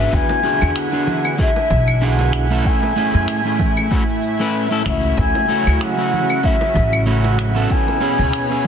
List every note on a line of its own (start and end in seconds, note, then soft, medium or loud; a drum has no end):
0.00 0.40 B3 medium
0.00 0.41 D4 medium
0.00 0.41 F#4 medium
0.00 0.41 B4 loud
0.00 0.15 E5 medium
0.12 0.25 E2 loud
0.12 2.62 D3 medium
0.12 7.66 E4 medium
0.12 5.14 G#5 medium
0.12 0.78 G#5 loud
0.12 kick loud
0.12 closed hi-hat medium
0.12 shaker soft
0.29 high bongo medium
0.29 shaker soft
0.43 0.88 B3 medium
0.43 0.89 D4 medium
0.43 0.89 F#4 medium
0.43 0.89 G#4 loud
0.43 closed hi-hat soft
0.43 shaker medium
0.61 0.72 E2 medium
0.61 closed hi-hat soft
0.61 claves medium
0.61 shaker soft
0.76 1.39 F#5 loud
0.76 finger snap medium
0.76 closed hi-hat medium
0.76 shaker soft
0.92 1.35 B3 medium
0.92 1.35 D4 medium
0.92 1.35 F#4 medium
0.92 1.36 G#4 medium
0.92 shaker soft
1.07 low conga medium
1.07 shaker medium
1.24 closed hi-hat soft
1.24 high bongo soft
1.24 claves medium
1.24 shaker soft
1.38 1.49 B3 medium
1.38 1.49 D4 medium
1.38 1.50 F#4 medium
1.38 1.50 G#4 loud
1.38 2.05 E5 loud
1.38 kick loud
1.38 closed hi-hat medium
1.38 shaker soft
1.56 high bongo medium
1.56 shaker soft
1.70 2.59 B1 medium
1.70 kick loud
1.70 low conga medium
1.70 shaker medium
1.88 closed hi-hat soft
1.88 claves medium
1.88 shaker soft
2.01 2.46 B3 medium
2.01 2.47 D4 medium
2.01 2.47 F#4 medium
2.01 2.47 G#4 medium
2.01 2.68 F#5 medium
2.01 closed hi-hat medium
2.01 shaker soft
2.19 closed hi-hat medium
2.19 high bongo medium
2.19 shaker soft
2.33 finger snap medium
2.33 shaker medium
2.50 2.93 A3 medium
2.50 2.93 C#4 medium
2.50 2.93 E4 medium
2.50 2.94 A4 loud
2.50 closed hi-hat soft
2.50 shaker soft
2.65 5.15 A2 medium
2.65 3.92 G#5 medium
2.65 kick loud
2.65 closed hi-hat medium
2.65 shaker soft
2.83 high bongo medium
2.83 shaker soft
2.96 3.41 A3 medium
2.96 3.41 C#4 medium
2.96 3.42 E4 medium
2.96 3.42 G#4 medium
2.96 closed hi-hat soft
2.96 shaker medium
3.14 3.24 F#2 medium
3.14 closed hi-hat soft
3.14 shaker soft
3.28 finger snap medium
3.28 closed hi-hat medium
3.28 shaker soft
3.45 3.88 A3 medium
3.45 3.88 C#4 medium
3.45 3.88 E4 medium
3.45 3.88 G#4 medium
3.45 shaker soft
3.59 kick loud
3.59 low conga medium
3.59 shaker medium
3.77 closed hi-hat soft
3.77 high bongo soft
3.77 claves medium
3.77 shaker soft
3.91 4.02 A3 medium
3.91 4.02 C#4 medium
3.91 4.02 E4 medium
3.91 4.03 F#4 loud
3.91 kick loud
3.91 closed hi-hat medium
3.91 shaker soft
4.09 shaker soft
4.23 shaker medium
4.40 4.67 A3 medium
4.40 4.68 C#4 medium
4.40 4.68 E4 medium
4.40 4.68 B4 loud
4.40 closed hi-hat soft
4.40 shaker soft
4.54 closed hi-hat soft
4.54 shaker soft
4.71 4.82 A3 loud
4.71 4.82 C#4 medium
4.71 4.83 E4 medium
4.71 4.83 A4 loud
4.71 closed hi-hat soft
4.71 shaker soft
4.85 5.10 C#2 medium
4.85 5.45 A3 medium
4.85 5.45 C#4 medium
4.85 5.46 E4 medium
4.85 5.46 F#4 medium
4.85 5.16 E5 medium
4.85 finger snap medium
4.85 kick medium
4.85 shaker medium
5.03 closed hi-hat soft
5.03 shaker soft
5.17 5.30 D2 loud
5.17 7.68 C#3 medium
5.17 7.67 F#3 medium
5.17 5.83 G#5 loud
5.17 kick loud
5.17 closed hi-hat medium
5.17 shaker soft
5.35 high bongo medium
5.35 shaker soft
5.49 5.94 A3 medium
5.49 5.94 C#4 medium
5.49 5.94 E4 medium
5.49 5.94 F#4 loud
5.49 closed hi-hat soft
5.49 shaker medium
5.67 5.77 D2 medium
5.67 closed hi-hat soft
5.67 claves medium
5.67 shaker soft
5.81 6.46 F#5 loud
5.81 finger snap medium
5.81 closed hi-hat medium
5.81 shaker soft
5.97 6.40 A3 medium
5.97 6.40 C#4 medium
5.97 6.41 E4 medium
5.97 6.41 F#4 medium
5.97 shaker soft
6.12 low conga medium
6.12 shaker medium
6.30 closed hi-hat soft
6.30 high bongo soft
6.30 claves medium
6.30 shaker soft
6.43 6.54 A3 medium
6.43 6.55 C#4 medium
6.43 6.55 E4 medium
6.43 6.55 F#4 loud
6.43 7.07 E5 loud
6.43 kick loud
6.43 closed hi-hat medium
6.43 shaker soft
6.61 high bongo medium
6.61 shaker soft
6.74 7.64 A1 loud
6.74 kick loud
6.74 low conga medium
6.74 shaker medium
6.93 closed hi-hat soft
6.93 claves medium
6.93 shaker soft
7.06 7.51 A3 medium
7.06 7.52 C#4 medium
7.06 7.52 E4 medium
7.06 7.52 F#4 medium
7.06 7.73 F#5 medium
7.06 closed hi-hat medium
7.06 shaker soft
7.24 closed hi-hat medium
7.24 high bongo medium
7.24 shaker soft
7.39 finger snap medium
7.39 shaker medium
7.55 7.98 B3 loud
7.55 7.98 C#4 medium
7.55 7.98 E4 medium
7.55 7.99 A4 loud
7.55 closed hi-hat soft
7.55 shaker soft
7.70 8.67 B2 medium
7.70 8.67 C#4 loud
7.70 8.67 B4 medium
7.70 8.67 G#5 medium
7.70 kick loud
7.70 closed hi-hat medium
7.70 shaker soft
7.88 high bongo medium
7.88 shaker soft
8.01 8.46 B3 medium
8.01 8.46 C#4 medium
8.01 8.47 E4 medium
8.01 8.47 G#4 loud
8.01 closed hi-hat soft
8.01 shaker medium
8.19 8.29 C#2 medium
8.19 closed hi-hat soft
8.19 shaker soft
8.33 finger snap medium
8.33 closed hi-hat medium
8.33 shaker soft
8.50 8.67 B3 medium
8.50 8.67 C#4 medium
8.50 8.67 E4 medium
8.50 8.67 G#4 medium
8.50 shaker soft